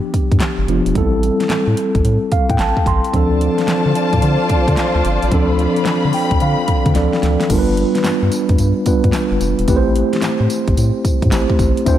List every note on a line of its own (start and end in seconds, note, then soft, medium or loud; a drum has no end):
0.00 0.64 F3 medium
0.00 0.64 B3 medium
0.00 0.65 D4 medium
0.00 0.65 G4 medium
0.14 0.21 G2 soft
0.14 kick medium
0.14 closed hi-hat medium
0.32 0.39 G2 medium
0.32 kick medium
0.32 closed hi-hat soft
0.40 snare loud
0.40 clap medium
0.40 closed hi-hat medium
0.58 0.66 G1 medium
0.68 0.82 F1 loud
0.68 0.96 F3 medium
0.68 0.95 B3 medium
0.68 0.96 D4 medium
0.68 0.96 F4 medium
0.68 closed hi-hat medium
0.86 0.93 E1 medium
0.86 closed hi-hat medium
0.95 1.31 A1 loud
0.95 3.09 G3 medium
0.95 1.04 B3 medium
0.95 3.10 E4 medium
0.95 3.11 A4 medium
0.95 kick loud
0.95 closed hi-hat medium
1.02 3.13 C4 medium
1.23 closed hi-hat medium
1.40 snare medium
1.40 closed hi-hat soft
1.50 1.57 A2 medium
1.50 snare loud
1.50 clap loud
1.50 closed hi-hat medium
1.67 1.75 A2 medium
1.77 closed hi-hat medium
1.95 2.02 A1 medium
1.95 kick medium
1.95 closed hi-hat soft
2.04 2.18 A2 loud
2.04 closed hi-hat medium
2.32 2.39 A2 soft
2.32 2.49 F5 medium
2.32 kick medium
2.32 closed hi-hat medium
2.50 2.57 A2 loud
2.50 2.59 G5 medium
2.50 kick medium
2.50 closed hi-hat medium
2.59 2.73 A1 medium
2.59 2.85 A5 medium
2.59 snare loud
2.59 clap medium
2.59 closed hi-hat medium
2.77 kick medium
2.86 3.00 A1 medium
2.86 3.12 C6 medium
2.86 kick medium
2.86 closed hi-hat medium
3.04 closed hi-hat medium
3.13 3.49 D2 loud
3.13 5.28 F3 medium
3.13 5.28 C4 medium
3.13 5.29 D4 medium
3.13 7.46 F4 medium
3.13 5.29 A4 medium
3.13 7.46 C5 medium
3.13 7.46 D5 medium
3.13 5.29 A5 medium
3.13 kick medium
3.13 closed hi-hat medium
3.41 closed hi-hat medium
3.58 snare medium
3.58 closed hi-hat soft
3.68 3.75 D3 medium
3.68 snare loud
3.68 clap loud
3.68 closed hi-hat medium
3.86 3.93 D3 loud
3.95 closed hi-hat medium
4.13 4.21 A2 medium
4.13 kick medium
4.13 closed hi-hat soft
4.22 4.37 D3 loud
4.22 closed hi-hat medium
4.50 4.57 D3 soft
4.50 kick medium
4.50 closed hi-hat medium
4.68 4.75 D3 loud
4.68 kick medium
4.68 closed hi-hat soft
4.77 snare loud
4.77 clap medium
4.77 closed hi-hat medium
4.95 5.03 D2 medium
5.05 5.19 G1 loud
5.05 closed hi-hat medium
5.22 5.30 A1 loud
5.22 closed hi-hat medium
5.32 5.67 D2 loud
5.32 6.92 F3 medium
5.32 6.92 C4 medium
5.32 6.93 D4 medium
5.32 6.93 A4 medium
5.32 7.48 B5 medium
5.32 kick loud
5.32 closed hi-hat medium
5.59 closed hi-hat medium
5.76 closed hi-hat soft
5.85 5.94 D3 soft
5.85 snare loud
5.85 clap medium
5.85 closed hi-hat medium
6.05 6.12 D3 loud
6.13 6.39 G5 medium
6.13 open hi-hat medium
6.31 6.39 D2 medium
6.31 kick medium
6.31 closed hi-hat soft
6.40 6.56 D3 loud
6.40 6.92 F5 medium
6.40 closed hi-hat medium
6.68 6.75 D3 soft
6.68 kick loud
6.68 closed hi-hat medium
6.86 6.93 D3 medium
6.86 kick medium
6.86 closed hi-hat soft
6.95 7.10 D2 medium
6.95 7.50 F3 medium
6.95 7.50 C4 medium
6.95 7.50 D4 soft
6.95 7.50 A4 medium
6.95 7.46 D5 medium
6.95 snare medium
6.95 closed hi-hat medium
7.13 snare medium
7.23 7.37 D2 medium
7.23 snare medium
7.23 closed hi-hat medium
7.40 snare medium
7.40 closed hi-hat medium
7.49 7.85 G1 loud
7.49 8.83 G3 medium
7.49 8.84 B3 medium
7.49 8.84 D4 medium
7.49 8.84 F4 medium
7.49 7.59 A#4 medium
7.49 kick loud
7.49 closed hi-hat medium
7.49 crash loud
7.49 tambourine medium
7.59 8.86 B4 medium
7.77 closed hi-hat medium
7.95 snare medium
7.95 closed hi-hat medium
8.04 8.12 G2 soft
8.04 snare loud
8.04 clap medium
8.04 closed hi-hat medium
8.04 tambourine medium
8.23 8.30 G2 medium
8.32 closed hi-hat medium
8.32 tambourine medium
8.49 8.57 F2 medium
8.49 kick medium
8.49 closed hi-hat soft
8.58 8.73 G2 loud
8.58 closed hi-hat medium
8.58 tambourine medium
8.86 8.93 G2 soft
8.86 9.68 G3 medium
8.86 9.68 B3 medium
8.86 9.68 D4 medium
8.86 9.69 F4 medium
8.86 9.69 B4 medium
8.86 kick medium
8.86 closed hi-hat medium
8.86 tambourine medium
9.04 9.12 G2 loud
9.04 kick loud
9.04 closed hi-hat medium
9.13 snare loud
9.13 clap loud
9.13 closed hi-hat medium
9.13 tambourine loud
9.31 9.39 G1 medium
9.41 9.55 F1 loud
9.41 closed hi-hat medium
9.41 tambourine medium
9.59 9.66 E1 loud
9.59 closed hi-hat medium
9.68 10.03 A1 loud
9.68 11.28 A3 medium
9.68 11.28 C4 medium
9.68 11.29 E4 medium
9.68 11.29 G4 medium
9.68 9.77 B4 medium
9.68 kick loud
9.68 closed hi-hat medium
9.68 tambourine medium
9.76 11.32 C5 medium
9.96 closed hi-hat medium
10.13 snare medium
10.13 closed hi-hat medium
10.22 10.30 A2 soft
10.22 snare loud
10.22 clap medium
10.22 closed hi-hat medium
10.22 tambourine loud
10.40 10.48 A2 loud
10.50 closed hi-hat medium
10.50 tambourine medium
10.68 10.75 A1 medium
10.68 kick loud
10.68 closed hi-hat soft
10.77 10.91 A2 loud
10.77 closed hi-hat medium
10.77 tambourine medium
11.05 11.12 A2 soft
11.05 kick medium
11.05 closed hi-hat medium
11.05 tambourine medium
11.22 11.30 A2 loud
11.22 kick loud
11.22 closed hi-hat soft
11.32 11.46 A1 medium
11.32 11.84 A3 medium
11.32 11.85 C4 soft
11.32 11.86 E4 soft
11.32 11.87 G4 medium
11.32 11.87 C5 medium
11.32 snare loud
11.32 clap medium
11.32 closed hi-hat medium
11.32 tambourine loud
11.50 kick loud
11.59 11.73 A1 loud
11.59 kick loud
11.59 closed hi-hat medium
11.59 tambourine medium
11.77 closed hi-hat medium
11.86 11.98 D2 loud
11.86 11.98 A3 medium
11.86 11.98 C4 medium
11.86 11.98 D4 medium
11.86 11.95 E4 medium
11.86 11.98 C5 medium
11.86 kick loud
11.86 closed hi-hat medium
11.86 tambourine medium
11.94 11.98 F4 medium